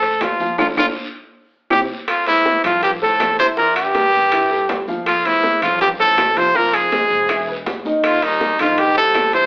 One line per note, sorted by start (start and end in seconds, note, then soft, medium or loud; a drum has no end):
0.00 0.17 A1 medium
0.00 0.33 A3 medium
0.00 0.24 A4 loud
0.00 0.33 A4 medium
0.00 0.33 C5 medium
0.00 high bongo soft
0.00 high conga soft
0.00 high timbale medium
0.21 0.56 D2 medium
0.21 0.59 F4 medium
0.21 high bongo soft
0.21 low bongo medium
0.21 high conga medium
0.21 high timbale medium
0.21 low timbale medium
0.21 short guiro medium
0.21 claves medium
0.40 0.55 F3 medium
0.40 0.56 F4 medium
0.40 0.56 F5 medium
0.40 high bongo soft
0.40 high conga medium
0.40 short guiro medium
0.58 0.73 D2 medium
0.58 0.70 D4 loud
0.58 0.70 F4 medium
0.58 0.68 F4 medium
0.58 0.70 A4 loud
0.58 low bongo loud
0.58 high conga medium
0.58 high timbale loud
0.58 long guiro loud
0.58 claves loud
0.77 0.91 D2 medium
0.77 0.89 D4 loud
0.77 0.89 F4 medium
0.77 0.87 F4 medium
0.77 0.89 A4 medium
0.77 low bongo medium
0.77 high conga medium
0.77 high timbale loud
0.77 long guiro medium
0.77 claves loud
1.70 1.85 C2 medium
1.70 1.83 C4 medium
1.70 1.83 E4 loud
1.70 1.83 G4 loud
1.70 1.80 G4 medium
1.70 low bongo loud
1.70 high conga loud
1.70 high timbale medium
1.70 long guiro medium
1.70 claves medium
2.08 2.26 F2 medium
2.08 2.27 F4 medium
2.08 high bongo medium
2.08 high conga soft
2.08 high timbale loud
2.08 long guiro medium
2.08 claves medium
2.26 2.62 E2 medium
2.26 2.57 A3 medium
2.26 2.62 E4 loud
2.26 2.57 A4 medium
2.26 2.58 C5 medium
2.26 high conga soft
2.26 high timbale medium
2.45 high bongo medium
2.45 high conga medium
2.45 low timbale medium
2.45 short guiro medium
2.64 2.82 F2 medium
2.64 3.16 A2 medium
2.64 2.95 F3 medium
2.64 2.95 F4 loud
2.64 2.82 F4 loud
2.64 2.95 F5 medium
2.64 high conga soft
2.64 low conga medium
2.64 high timbale loud
2.64 short guiro medium
2.64 claves medium
2.83 2.92 G2 medium
2.83 2.92 G4 medium
2.83 high bongo medium
2.83 high conga soft
2.83 low conga medium
2.83 high timbale medium
2.83 long guiro medium
3.01 3.37 A2 medium
3.01 3.32 A3 medium
3.01 3.32 A4 medium
3.01 3.37 A4 loud
3.01 3.32 C5 medium
3.01 high conga soft
3.20 4.07 E2 medium
3.20 high bongo medium
3.20 low bongo medium
3.20 high conga medium
3.20 high timbale loud
3.20 low timbale medium
3.20 short guiro medium
3.20 claves medium
3.39 3.48 C3 medium
3.39 3.55 E3 medium
3.39 3.55 E4 medium
3.39 3.48 C5 loud
3.39 3.55 E5 loud
3.39 high conga soft
3.39 high timbale medium
3.39 short guiro medium
3.57 3.75 A#2 medium
3.57 3.88 E3 medium
3.57 3.89 E4 medium
3.57 3.75 A#4 loud
3.57 3.89 E5 medium
3.57 high bongo medium
3.57 high conga soft
3.57 long guiro medium
3.76 4.84 G2 medium
3.76 4.84 G4 loud
3.76 high conga soft
3.76 high timbale loud
3.76 claves medium
3.95 4.25 G3 medium
3.95 4.26 G4 medium
3.95 4.26 A#4 medium
3.95 high bongo medium
3.95 high conga medium
3.95 high timbale medium
3.95 low timbale medium
3.95 short guiro medium
4.13 4.65 A1 medium
4.13 high bongo soft
4.13 high conga soft
4.13 short guiro medium
4.32 4.48 E3 medium
4.32 4.48 E4 medium
4.32 4.48 E5 medium
4.32 high bongo medium
4.32 high conga soft
4.32 high timbale loud
4.32 long guiro medium
4.32 claves medium
4.51 4.81 G3 medium
4.51 4.82 G4 medium
4.51 4.82 A4 medium
4.51 high bongo soft
4.51 high conga soft
4.69 5.56 D2 medium
4.69 high bongo medium
4.69 low bongo medium
4.69 high conga medium
4.69 high timbale medium
4.69 low timbale medium
4.69 short guiro medium
4.87 5.18 F3 loud
4.87 5.19 F4 medium
4.87 5.19 F5 loud
4.87 high bongo soft
4.87 high conga medium
4.87 short guiro medium
5.06 5.27 F2 medium
5.06 5.27 F4 loud
5.06 high bongo medium
5.06 high conga soft
5.06 high timbale medium
5.06 long guiro medium
5.06 claves medium
5.25 5.62 E2 medium
5.25 5.56 A3 medium
5.25 5.63 E4 loud
5.25 5.56 A4 medium
5.25 5.56 C5 medium
5.25 high conga soft
5.25 high timbale medium
5.43 high bongo medium
5.43 high conga medium
5.43 low timbale medium
5.43 short guiro medium
5.62 6.14 A1 loud
5.62 5.80 F2 medium
5.62 5.93 F3 medium
5.62 5.93 F4 loud
5.62 5.80 F4 medium
5.62 5.93 F5 medium
5.62 high conga soft
5.62 low conga medium
5.62 high timbale medium
5.62 short guiro medium
5.62 claves medium
5.81 5.89 G2 medium
5.81 5.90 G4 medium
5.81 high bongo medium
5.81 high conga soft
5.81 low conga medium
5.81 high timbale medium
5.81 long guiro medium
5.99 6.38 A2 medium
5.99 6.30 A3 medium
5.99 6.30 A4 medium
5.99 6.39 A4 loud
5.99 6.30 C5 medium
5.99 high conga soft
6.18 7.05 F1 medium
6.18 high bongo medium
6.18 low bongo medium
6.18 high conga medium
6.18 high timbale medium
6.18 low timbale medium
6.18 short guiro medium
6.18 claves medium
6.36 6.57 C3 medium
6.36 6.52 F3 loud
6.36 6.52 F4 loud
6.36 6.58 C5 loud
6.36 6.52 F5 medium
6.36 high conga soft
6.36 high timbale medium
6.36 short guiro medium
6.55 6.75 A#2 medium
6.55 6.85 F3 medium
6.55 6.86 F4 medium
6.55 6.76 A#4 loud
6.55 6.86 F5 medium
6.55 high bongo medium
6.55 high conga soft
6.55 long guiro medium
6.74 7.58 G#2 medium
6.74 7.59 G#4 medium
6.74 high conga soft
6.74 high timbale medium
6.74 claves medium
6.92 7.23 G#3 medium
6.92 7.23 G#4 medium
6.92 7.23 C5 medium
6.92 high bongo medium
6.92 high conga medium
6.92 high timbale medium
6.92 low timbale medium
6.92 short guiro medium
7.10 7.63 E1 loud
7.10 high bongo soft
7.10 high conga soft
7.10 short guiro medium
7.29 7.45 E3 medium
7.29 7.45 E4 medium
7.29 7.45 E5 medium
7.29 high bongo medium
7.29 high conga soft
7.29 high timbale loud
7.29 long guiro medium
7.29 claves medium
7.48 7.79 G#3 medium
7.48 7.79 G#4 medium
7.48 7.79 B4 medium
7.48 high bongo soft
7.48 high conga soft
7.66 8.53 D#2 medium
7.66 high bongo medium
7.66 low bongo medium
7.66 high conga medium
7.66 high timbale medium
7.66 low timbale medium
7.66 short guiro medium
7.85 8.16 D#3 medium
7.85 8.16 D#4 loud
7.85 8.16 D#5 loud
7.85 high bongo soft
7.85 high conga medium
7.85 short guiro medium
8.04 8.24 F2 medium
8.04 8.25 F4 medium
8.04 high bongo medium
8.04 high conga soft
8.04 high timbale medium
8.04 long guiro medium
8.04 claves medium
8.22 8.59 D#2 medium
8.22 8.53 G3 medium
8.22 8.60 D#4 loud
8.22 8.53 G4 medium
8.22 8.53 A#4 medium
8.22 high conga soft
8.22 high timbale medium
8.41 high bongo medium
8.41 high conga medium
8.41 low timbale medium
8.41 short guiro medium
8.59 9.11 A#1 loud
8.59 8.80 F2 medium
8.59 8.90 D#3 loud
8.59 8.90 D#4 medium
8.59 8.81 F4 medium
8.59 8.90 D#5 medium
8.59 high conga soft
8.59 low conga medium
8.59 high timbale medium
8.59 short guiro medium
8.59 claves medium
8.78 8.97 G2 medium
8.78 8.97 G4 medium
8.78 high bongo medium
8.78 high conga soft
8.78 high timbale medium
8.78 long guiro medium
8.96 9.31 A2 medium
8.96 9.27 G3 medium
8.96 9.27 G4 medium
8.96 9.32 A4 loud
8.96 9.27 C5 medium
8.96 high conga soft
9.15 9.46 E2 loud
9.15 high bongo medium
9.15 low bongo medium
9.15 high conga medium
9.15 high timbale medium
9.15 low timbale medium
9.15 short guiro medium
9.15 claves medium
9.33 9.46 C3 medium
9.33 9.46 E3 medium
9.33 9.46 E4 medium
9.33 9.46 C5 loud
9.33 9.46 E5 medium
9.33 high conga soft
9.33 high timbale medium
9.33 short guiro medium